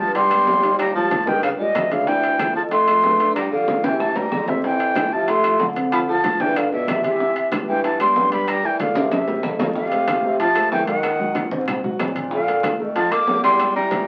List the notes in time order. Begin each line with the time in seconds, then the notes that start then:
0.00 G2 F3 G3 G4 B4 A5
0.14 G3 C6, high bongo, high conga, high timbale
0.31 G3 B3 G4, high bongo, high conga, high timbale, claves
0.47 D#2, high bongo, low bongo, high conga
0.63 D#3 D#4 D#5, high bongo, high conga, high timbale
0.79 G3 A#5, high bongo, high conga, high timbale, claves
0.95 F3 G3 G4 A#4 A5, high bongo, high conga
1.11 high bongo, high conga, high timbale
1.26 G2 D#3 G3 G4 A#4 G5, high conga
1.43 C#3 F5, high bongo, high conga, high timbale, claves
1.59 D#2 A#2 G3 G4 A#4 D#5, high bongo, high conga
1.75 D2, high bongo, low bongo, high conga, high timbale, low timbale, claves
1.91 C#3 D3 D4 D5 F5, high bongo, high conga, high timbale
2.07 D3 E3 D4 D5 G5, high bongo, high conga
2.23 high conga, high timbale
2.39 F3 F4 A4, high bongo, high conga, high timbale, claves
2.55 F2 F3 F4 A4 A5, high bongo, high conga
2.71 A3 C6, high bongo, high conga, high timbale
2.88 F3 F4 A4, high bongo, high conga, high timbale, claves
3.04 G2, high bongo, low bongo, high conga, low timbale
3.20 D3 D4 D5, high bongo, high conga, high timbale
3.35 G3 A#5, high bongo, high conga, high timbale, claves
3.51 D3 F3 F4 G4 F5, high bongo, high conga
3.68 high bongo, high conga, high timbale
3.83 C3 E3 E4 G4 G5, high conga, high timbale
3.99 E3 A5, high bongo, high conga, low timbale, claves
4.16 G2 E3 G3 E4 G4 A#5, high bongo, high conga, low timbale
4.32 F2, high bongo, low bongo, high conga, claves
4.48 C3 C4 C5 E5, high bongo, high conga, low timbale
4.64 C3 E3 C4 C5 G5, high bongo, high conga
4.80 high conga, high timbale
4.95 E3 E4 F4, high bongo, high conga, high timbale, claves
5.11 C3 F3 E4 F4 A5, high bongo, high conga
5.28 A3 C6, high bongo, high conga, high timbale
5.43 F3 E4 F4, high bongo, high conga, high timbale, claves
5.60 D3, high bongo, low bongo, high conga
5.76 C3 C4 C5, high bongo, high conga, high timbale
5.92 F3 B5, high bongo, high conga, high timbale, claves
6.08 F3 F4 A4 A5, high bongo, high conga
6.24 high bongo, high conga, high timbale
6.40 G2 D3 E3 D4 F4 G5, high conga
6.56 D3 F5, high bongo, high conga, high timbale, claves
6.72 B2 D3 D4 F4 E5, high bongo, high conga
6.88 C3, high bongo, low bongo, high conga, high timbale, claves
7.03 C3 E3 E4 E5, high bongo, high conga, high timbale
7.20 E3 E4 E5, high bongo, high conga
7.36 high conga, high timbale
7.52 G3 G4 B4, high bongo, high conga, high timbale, claves
7.68 G2 E3 G3 G4 B4 G5, high bongo, high conga
7.84 E3 A5, high bongo, high conga, high timbale
8.00 G3 B3 G4 C6, high bongo, high conga, high timbale, claves
8.16 G2, high bongo, low bongo, high conga
8.31 G3 G4 G5 B5, high bongo, high conga, high timbale
8.48 G3 A#5, high bongo, high conga, high timbale, claves
8.63 E3 A#3 A#4 D5 G5, high bongo, high conga
8.80 D3 F5, high bongo, high conga, high timbale
8.95 C3 A#3 A#4 C5, high bongo, high conga, high timbale
9.11 C3 E5, low bongo, high conga, high timbale, claves
9.28 A#3 A#4 C5, high conga, low timbale
9.43 F2, low bongo, high conga, claves
9.59 F3 F4 F5, low bongo, high conga, low timbale
9.75 C3 F3 F4 F5, high bongo, high conga
9.92 A3 A4 C5, high conga, high timbale
10.08 high bongo, high conga, high timbale, claves
10.23 C3 A3 A4 C5, high bongo, high conga
10.39 F3 F4 F5 A5, high bongo, high conga, high timbale
10.55 A3 A4 C5, high bongo, high conga, high timbale, claves
10.72 D#3 E3 G5, high bongo, low bongo, high conga
10.87 D#3 F#3 F#4 F#5, high bongo, high conga, high timbale
11.03 A#3 A#4 C#5, high bongo, high conga, high timbale, claves
11.19 F#3 F#4 F#5, high bongo, high conga
11.35 high bongo, high conga, high timbale
11.51 G#2 C4 C5 D#5, high conga
11.68 high bongo, high conga, low conga, high timbale, claves
11.83 G#2 F#3 F#4 F#5, high bongo, high conga, low conga
11.99 A#2 C4 C5 D#5, high bongo, low bongo, high conga, high timbale, low timbale, claves
12.15 high bongo, high conga, high timbale
12.31 D3 F3 F4 F5, high bongo, high conga
12.47 A#3 A4 A#4, high conga, high timbale
12.63 high bongo, high conga, high timbale, claves
12.79 F2 A3 A4 A#4, high bongo, high conga
12.95 F3 F4 F5 A5, high bongo, high conga, high timbale
13.11 A#3 A4 A#4 D6, high bongo, high conga, high timbale, claves
13.27 E2, high bongo, low bongo, high conga, low timbale
13.43 E3 G3 E4 E5 C6, high bongo, high conga, high timbale
13.59 G3 G4 A#4, high bongo, high conga, high timbale, claves
13.75 E3 G3 E4 E5 A#5, high bongo, high conga
13.91 high bongo, high conga, high timbale